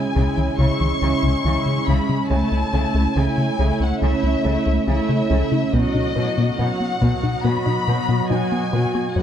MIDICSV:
0, 0, Header, 1, 9, 480
1, 0, Start_track
1, 0, Tempo, 857143
1, 1291, Time_signature, 4, 2, 24, 8
1, 5167, End_track
2, 0, Start_track
2, 0, Title_t, "Violin section"
2, 0, Program_c, 0, 48
2, 0, Note_on_c, 0, 80, 58
2, 330, Note_off_c, 0, 80, 0
2, 330, Note_on_c, 0, 85, 69
2, 1036, Note_off_c, 0, 85, 0
2, 1051, Note_on_c, 0, 83, 57
2, 1290, Note_on_c, 0, 81, 66
2, 1291, Note_off_c, 0, 83, 0
2, 1761, Note_off_c, 0, 81, 0
2, 1771, Note_on_c, 0, 80, 63
2, 2131, Note_off_c, 0, 80, 0
2, 2136, Note_on_c, 0, 78, 56
2, 2250, Note_on_c, 0, 76, 65
2, 2254, Note_off_c, 0, 78, 0
2, 2721, Note_off_c, 0, 76, 0
2, 2730, Note_on_c, 0, 76, 65
2, 3201, Note_off_c, 0, 76, 0
2, 3207, Note_on_c, 0, 75, 69
2, 3688, Note_on_c, 0, 78, 69
2, 3689, Note_off_c, 0, 75, 0
2, 4170, Note_off_c, 0, 78, 0
2, 4174, Note_on_c, 0, 83, 75
2, 4650, Note_on_c, 0, 80, 66
2, 4652, Note_off_c, 0, 83, 0
2, 5121, Note_off_c, 0, 80, 0
2, 5129, Note_on_c, 0, 78, 48
2, 5167, Note_off_c, 0, 78, 0
2, 5167, End_track
3, 0, Start_track
3, 0, Title_t, "Ambient pad"
3, 0, Program_c, 1, 92
3, 0, Note_on_c, 1, 56, 56
3, 0, Note_on_c, 1, 61, 55
3, 0, Note_on_c, 1, 64, 55
3, 0, Note_on_c, 1, 73, 57
3, 1269, Note_off_c, 1, 61, 0
3, 1270, Note_off_c, 1, 73, 0
3, 1271, Note_off_c, 1, 56, 0
3, 1271, Note_off_c, 1, 64, 0
3, 1292, Note_on_c, 1, 57, 59
3, 1293, Note_on_c, 1, 61, 56
3, 1293, Note_on_c, 1, 64, 58
3, 1293, Note_on_c, 1, 73, 62
3, 3190, Note_off_c, 1, 61, 0
3, 3190, Note_off_c, 1, 64, 0
3, 3190, Note_off_c, 1, 73, 0
3, 3212, Note_off_c, 1, 57, 0
3, 3215, Note_on_c, 1, 54, 62
3, 3215, Note_on_c, 1, 59, 62
3, 3215, Note_on_c, 1, 66, 59
3, 3215, Note_on_c, 1, 75, 63
3, 5124, Note_off_c, 1, 54, 0
3, 5124, Note_off_c, 1, 66, 0
3, 5133, Note_off_c, 1, 59, 0
3, 5133, Note_off_c, 1, 75, 0
3, 5167, End_track
4, 0, Start_track
4, 0, Title_t, "Viola section"
4, 0, Program_c, 2, 48
4, 0, Note_on_c, 2, 56, 34
4, 0, Note_on_c, 2, 64, 36
4, 82, Note_off_c, 2, 64, 0
4, 83, Note_off_c, 2, 56, 0
4, 89, Note_on_c, 2, 64, 33
4, 90, Note_on_c, 2, 56, 35
4, 324, Note_off_c, 2, 56, 0
4, 325, Note_off_c, 2, 64, 0
4, 331, Note_on_c, 2, 56, 40
4, 331, Note_on_c, 2, 64, 37
4, 566, Note_off_c, 2, 56, 0
4, 566, Note_off_c, 2, 64, 0
4, 572, Note_on_c, 2, 64, 38
4, 573, Note_on_c, 2, 56, 36
4, 807, Note_off_c, 2, 56, 0
4, 807, Note_off_c, 2, 64, 0
4, 813, Note_on_c, 2, 56, 41
4, 815, Note_on_c, 2, 64, 39
4, 1048, Note_off_c, 2, 56, 0
4, 1048, Note_off_c, 2, 64, 0
4, 1055, Note_on_c, 2, 64, 35
4, 1056, Note_on_c, 2, 56, 38
4, 1288, Note_off_c, 2, 64, 0
4, 1289, Note_off_c, 2, 56, 0
4, 1296, Note_on_c, 2, 57, 44
4, 1296, Note_on_c, 2, 64, 42
4, 1525, Note_off_c, 2, 64, 0
4, 1527, Note_off_c, 2, 57, 0
4, 1532, Note_on_c, 2, 64, 39
4, 1533, Note_on_c, 2, 57, 39
4, 1767, Note_off_c, 2, 57, 0
4, 1767, Note_off_c, 2, 64, 0
4, 1774, Note_on_c, 2, 57, 41
4, 1774, Note_on_c, 2, 64, 39
4, 2006, Note_off_c, 2, 57, 0
4, 2007, Note_off_c, 2, 64, 0
4, 2013, Note_on_c, 2, 57, 41
4, 2013, Note_on_c, 2, 64, 41
4, 2247, Note_off_c, 2, 57, 0
4, 2247, Note_off_c, 2, 64, 0
4, 2254, Note_on_c, 2, 64, 45
4, 2255, Note_on_c, 2, 57, 44
4, 2486, Note_off_c, 2, 64, 0
4, 2487, Note_off_c, 2, 57, 0
4, 2493, Note_on_c, 2, 57, 44
4, 2493, Note_on_c, 2, 64, 44
4, 2725, Note_off_c, 2, 57, 0
4, 2727, Note_off_c, 2, 64, 0
4, 2732, Note_on_c, 2, 57, 49
4, 2734, Note_on_c, 2, 64, 47
4, 2961, Note_off_c, 2, 64, 0
4, 2963, Note_off_c, 2, 57, 0
4, 2968, Note_on_c, 2, 64, 41
4, 2970, Note_on_c, 2, 57, 43
4, 3205, Note_off_c, 2, 64, 0
4, 3206, Note_off_c, 2, 57, 0
4, 3215, Note_on_c, 2, 54, 51
4, 3215, Note_on_c, 2, 66, 50
4, 3448, Note_off_c, 2, 54, 0
4, 3448, Note_off_c, 2, 66, 0
4, 3454, Note_on_c, 2, 54, 45
4, 3456, Note_on_c, 2, 66, 43
4, 3687, Note_off_c, 2, 66, 0
4, 3688, Note_off_c, 2, 54, 0
4, 3694, Note_on_c, 2, 54, 43
4, 3694, Note_on_c, 2, 66, 44
4, 3928, Note_off_c, 2, 54, 0
4, 3928, Note_off_c, 2, 66, 0
4, 3935, Note_on_c, 2, 66, 42
4, 3936, Note_on_c, 2, 54, 44
4, 4168, Note_off_c, 2, 66, 0
4, 4169, Note_off_c, 2, 54, 0
4, 4176, Note_on_c, 2, 54, 49
4, 4176, Note_on_c, 2, 66, 46
4, 4407, Note_off_c, 2, 54, 0
4, 4407, Note_off_c, 2, 66, 0
4, 4414, Note_on_c, 2, 54, 42
4, 4414, Note_on_c, 2, 66, 44
4, 4646, Note_off_c, 2, 54, 0
4, 4646, Note_off_c, 2, 66, 0
4, 4653, Note_on_c, 2, 54, 45
4, 4653, Note_on_c, 2, 66, 44
4, 4882, Note_off_c, 2, 66, 0
4, 4885, Note_off_c, 2, 54, 0
4, 4889, Note_on_c, 2, 66, 35
4, 4891, Note_on_c, 2, 54, 36
4, 5125, Note_off_c, 2, 66, 0
4, 5126, Note_off_c, 2, 54, 0
4, 5132, Note_on_c, 2, 57, 41
4, 5132, Note_on_c, 2, 66, 40
4, 5167, Note_off_c, 2, 57, 0
4, 5167, Note_off_c, 2, 66, 0
4, 5167, End_track
5, 0, Start_track
5, 0, Title_t, "Synth arpeggio sound"
5, 0, Program_c, 3, 84
5, 91, Note_on_c, 3, 49, 69
5, 163, Note_off_c, 3, 49, 0
5, 209, Note_on_c, 3, 52, 46
5, 282, Note_off_c, 3, 52, 0
5, 331, Note_on_c, 3, 49, 70
5, 403, Note_off_c, 3, 49, 0
5, 453, Note_on_c, 3, 52, 54
5, 524, Note_off_c, 3, 52, 0
5, 691, Note_on_c, 3, 49, 72
5, 763, Note_off_c, 3, 49, 0
5, 812, Note_on_c, 3, 52, 45
5, 884, Note_off_c, 3, 52, 0
5, 1052, Note_on_c, 3, 49, 64
5, 1124, Note_off_c, 3, 49, 0
5, 1173, Note_on_c, 3, 56, 47
5, 1244, Note_off_c, 3, 56, 0
5, 1292, Note_on_c, 3, 57, 72
5, 1363, Note_off_c, 3, 57, 0
5, 1414, Note_on_c, 3, 61, 49
5, 1485, Note_off_c, 3, 61, 0
5, 1535, Note_on_c, 3, 69, 50
5, 1606, Note_off_c, 3, 69, 0
5, 1653, Note_on_c, 3, 57, 71
5, 1725, Note_off_c, 3, 57, 0
5, 1773, Note_on_c, 3, 69, 46
5, 1844, Note_off_c, 3, 69, 0
5, 2011, Note_on_c, 3, 57, 68
5, 2083, Note_off_c, 3, 57, 0
5, 2130, Note_on_c, 3, 61, 52
5, 2203, Note_off_c, 3, 61, 0
5, 2251, Note_on_c, 3, 57, 74
5, 2323, Note_off_c, 3, 57, 0
5, 2370, Note_on_c, 3, 61, 55
5, 2443, Note_off_c, 3, 61, 0
5, 2611, Note_on_c, 3, 57, 74
5, 2683, Note_off_c, 3, 57, 0
5, 2731, Note_on_c, 3, 61, 50
5, 2803, Note_off_c, 3, 61, 0
5, 2969, Note_on_c, 3, 57, 69
5, 3041, Note_off_c, 3, 57, 0
5, 3090, Note_on_c, 3, 64, 52
5, 3163, Note_off_c, 3, 64, 0
5, 3208, Note_on_c, 3, 59, 68
5, 3281, Note_off_c, 3, 59, 0
5, 3329, Note_on_c, 3, 63, 49
5, 3402, Note_off_c, 3, 63, 0
5, 3448, Note_on_c, 3, 71, 58
5, 3521, Note_off_c, 3, 71, 0
5, 3572, Note_on_c, 3, 59, 76
5, 3644, Note_off_c, 3, 59, 0
5, 3691, Note_on_c, 3, 71, 49
5, 3763, Note_off_c, 3, 71, 0
5, 3929, Note_on_c, 3, 59, 70
5, 4002, Note_off_c, 3, 59, 0
5, 4050, Note_on_c, 3, 63, 49
5, 4123, Note_off_c, 3, 63, 0
5, 4168, Note_on_c, 3, 59, 70
5, 4241, Note_off_c, 3, 59, 0
5, 4288, Note_on_c, 3, 63, 56
5, 4361, Note_off_c, 3, 63, 0
5, 4530, Note_on_c, 3, 59, 72
5, 4602, Note_off_c, 3, 59, 0
5, 4649, Note_on_c, 3, 63, 52
5, 4722, Note_off_c, 3, 63, 0
5, 4889, Note_on_c, 3, 59, 69
5, 4962, Note_off_c, 3, 59, 0
5, 5010, Note_on_c, 3, 66, 50
5, 5083, Note_off_c, 3, 66, 0
5, 5130, Note_on_c, 3, 54, 71
5, 5167, Note_off_c, 3, 54, 0
5, 5167, End_track
6, 0, Start_track
6, 0, Title_t, "Cello section"
6, 0, Program_c, 4, 48
6, 92, Note_on_c, 4, 49, 41
6, 137, Note_off_c, 4, 49, 0
6, 334, Note_on_c, 4, 49, 42
6, 379, Note_off_c, 4, 49, 0
6, 574, Note_on_c, 4, 49, 39
6, 619, Note_off_c, 4, 49, 0
6, 814, Note_on_c, 4, 49, 41
6, 859, Note_off_c, 4, 49, 0
6, 1054, Note_on_c, 4, 49, 44
6, 1099, Note_off_c, 4, 49, 0
6, 1293, Note_on_c, 4, 49, 45
6, 1338, Note_off_c, 4, 49, 0
6, 1535, Note_on_c, 4, 49, 45
6, 1580, Note_off_c, 4, 49, 0
6, 1775, Note_on_c, 4, 49, 45
6, 1819, Note_off_c, 4, 49, 0
6, 2014, Note_on_c, 4, 49, 46
6, 2058, Note_off_c, 4, 49, 0
6, 2253, Note_on_c, 4, 49, 49
6, 2298, Note_off_c, 4, 49, 0
6, 2493, Note_on_c, 4, 49, 46
6, 2538, Note_off_c, 4, 49, 0
6, 2731, Note_on_c, 4, 49, 49
6, 2776, Note_off_c, 4, 49, 0
6, 2973, Note_on_c, 4, 49, 48
6, 3018, Note_off_c, 4, 49, 0
6, 3214, Note_on_c, 4, 47, 51
6, 3259, Note_off_c, 4, 47, 0
6, 3453, Note_on_c, 4, 47, 48
6, 3498, Note_off_c, 4, 47, 0
6, 3693, Note_on_c, 4, 47, 54
6, 3738, Note_off_c, 4, 47, 0
6, 3934, Note_on_c, 4, 47, 48
6, 3979, Note_off_c, 4, 47, 0
6, 4172, Note_on_c, 4, 47, 50
6, 4217, Note_off_c, 4, 47, 0
6, 4415, Note_on_c, 4, 47, 45
6, 4460, Note_off_c, 4, 47, 0
6, 4652, Note_on_c, 4, 47, 45
6, 4697, Note_off_c, 4, 47, 0
6, 4891, Note_on_c, 4, 47, 40
6, 4936, Note_off_c, 4, 47, 0
6, 5134, Note_on_c, 4, 42, 39
6, 5167, Note_off_c, 4, 42, 0
6, 5167, End_track
7, 0, Start_track
7, 0, Title_t, "Analog synth bass"
7, 0, Program_c, 5, 38
7, 89, Note_on_c, 5, 37, 69
7, 162, Note_off_c, 5, 37, 0
7, 207, Note_on_c, 5, 37, 46
7, 281, Note_off_c, 5, 37, 0
7, 326, Note_on_c, 5, 37, 65
7, 400, Note_off_c, 5, 37, 0
7, 450, Note_on_c, 5, 37, 50
7, 522, Note_off_c, 5, 37, 0
7, 569, Note_on_c, 5, 37, 46
7, 642, Note_off_c, 5, 37, 0
7, 687, Note_on_c, 5, 37, 66
7, 760, Note_off_c, 5, 37, 0
7, 810, Note_on_c, 5, 37, 51
7, 882, Note_off_c, 5, 37, 0
7, 929, Note_on_c, 5, 49, 47
7, 1002, Note_off_c, 5, 49, 0
7, 1051, Note_on_c, 5, 37, 68
7, 1123, Note_off_c, 5, 37, 0
7, 1172, Note_on_c, 5, 49, 50
7, 1244, Note_off_c, 5, 49, 0
7, 1291, Note_on_c, 5, 37, 64
7, 1363, Note_off_c, 5, 37, 0
7, 1409, Note_on_c, 5, 37, 49
7, 1482, Note_off_c, 5, 37, 0
7, 1530, Note_on_c, 5, 37, 52
7, 1602, Note_off_c, 5, 37, 0
7, 1648, Note_on_c, 5, 37, 73
7, 1721, Note_off_c, 5, 37, 0
7, 1769, Note_on_c, 5, 37, 51
7, 1841, Note_off_c, 5, 37, 0
7, 1891, Note_on_c, 5, 49, 47
7, 1963, Note_off_c, 5, 49, 0
7, 2010, Note_on_c, 5, 37, 70
7, 2083, Note_off_c, 5, 37, 0
7, 2129, Note_on_c, 5, 37, 51
7, 2201, Note_off_c, 5, 37, 0
7, 2250, Note_on_c, 5, 37, 66
7, 2323, Note_off_c, 5, 37, 0
7, 2370, Note_on_c, 5, 37, 55
7, 2442, Note_off_c, 5, 37, 0
7, 2492, Note_on_c, 5, 37, 48
7, 2564, Note_off_c, 5, 37, 0
7, 2612, Note_on_c, 5, 37, 67
7, 2683, Note_off_c, 5, 37, 0
7, 2730, Note_on_c, 5, 37, 52
7, 2803, Note_off_c, 5, 37, 0
7, 2852, Note_on_c, 5, 49, 53
7, 2923, Note_off_c, 5, 49, 0
7, 2970, Note_on_c, 5, 37, 76
7, 3042, Note_off_c, 5, 37, 0
7, 3090, Note_on_c, 5, 49, 52
7, 3162, Note_off_c, 5, 49, 0
7, 3212, Note_on_c, 5, 47, 68
7, 3284, Note_off_c, 5, 47, 0
7, 3330, Note_on_c, 5, 47, 50
7, 3403, Note_off_c, 5, 47, 0
7, 3451, Note_on_c, 5, 47, 54
7, 3523, Note_off_c, 5, 47, 0
7, 3571, Note_on_c, 5, 47, 71
7, 3643, Note_off_c, 5, 47, 0
7, 3691, Note_on_c, 5, 47, 49
7, 3763, Note_off_c, 5, 47, 0
7, 3811, Note_on_c, 5, 59, 50
7, 3883, Note_off_c, 5, 59, 0
7, 3928, Note_on_c, 5, 47, 74
7, 4001, Note_off_c, 5, 47, 0
7, 4050, Note_on_c, 5, 47, 52
7, 4123, Note_off_c, 5, 47, 0
7, 4169, Note_on_c, 5, 47, 67
7, 4242, Note_off_c, 5, 47, 0
7, 4292, Note_on_c, 5, 47, 54
7, 4364, Note_off_c, 5, 47, 0
7, 4411, Note_on_c, 5, 47, 50
7, 4483, Note_off_c, 5, 47, 0
7, 4529, Note_on_c, 5, 47, 69
7, 4602, Note_off_c, 5, 47, 0
7, 4652, Note_on_c, 5, 47, 53
7, 4724, Note_off_c, 5, 47, 0
7, 4771, Note_on_c, 5, 59, 50
7, 4843, Note_off_c, 5, 59, 0
7, 4890, Note_on_c, 5, 47, 70
7, 4962, Note_off_c, 5, 47, 0
7, 5011, Note_on_c, 5, 59, 54
7, 5083, Note_off_c, 5, 59, 0
7, 5129, Note_on_c, 5, 42, 63
7, 5167, Note_off_c, 5, 42, 0
7, 5167, End_track
8, 0, Start_track
8, 0, Title_t, "Reverse cymbal"
8, 0, Program_c, 6, 119
8, 5133, Note_on_c, 6, 60, 46
8, 5167, Note_off_c, 6, 60, 0
8, 5167, End_track
9, 0, Start_track
9, 0, Title_t, "Taiko and cinematic ensemble drums"
9, 91, Note_on_c, 9, 41, 28
9, 147, Note_off_c, 9, 41, 0
9, 3211, Note_on_c, 9, 41, 57
9, 3267, Note_off_c, 9, 41, 0
9, 3931, Note_on_c, 9, 41, 30
9, 3987, Note_off_c, 9, 41, 0
9, 5167, End_track
0, 0, End_of_file